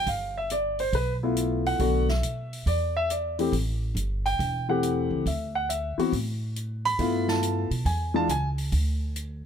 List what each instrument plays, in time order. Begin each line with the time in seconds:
0.07 upright bass G1, grand piano F5, kick, open hi-hat
0.38 grand piano E5
0.50 grand piano D5, closed hi-hat
0.79 grand piano C5, open hi-hat
0.92 upright bass B1, grand piano B4, kick, open hi-hat
1.23 grand piano A3 B3 E4 F4
1.37 closed hi-hat
1.66 grand piano F#5, open hi-hat
1.79 upright bass B1, grand piano D3 A3 B3 F#4, kick, open hi-hat
2.09 grand piano E5, snare
2.22 upright bass B2, closed hi-hat
2.53 open hi-hat
2.66 upright bass E2, grand piano D5, kick, open hi-hat
2.97 grand piano E5
3.10 grand piano D5, closed hi-hat
3.39 grand piano E3 A3 C4 G4, open hi-hat
3.52 upright bass A1, kick, open hi-hat
3.95 upright bass G1, closed hi-hat
4.26 grand piano G5, open hi-hat
4.39 upright bass E1, kick, open hi-hat
4.69 grand piano E3 A3 C4 G4 F#5
4.83 closed hi-hat
5.10 upright bass C#2
5.26 upright bass D2, grand piano E5, kick, open hi-hat
5.55 grand piano F#5
5.69 grand piano E5, closed hi-hat
5.98 grand piano E3 B3 C4 F#4, muted upright bass stroke, open hi-hat
6.13 upright bass A2, kick, open hi-hat
6.56 closed hi-hat
6.85 grand piano B5, open hi-hat
6.99 upright bass G2, grand piano A3 B3 E4 F4, kick, open hi-hat
7.28 grand piano A5, snare
7.43 closed hi-hat
7.71 upright bass B2, open hi-hat
7.85 upright bass E2, grand piano G#5, kick, open hi-hat
8.14 grand piano E3 G#3 D4 F4 A5
8.28 upright bass C#2, grand piano G#5, closed hi-hat
8.58 open hi-hat
8.72 upright bass D2, kick, open hi-hat
9.16 closed hi-hat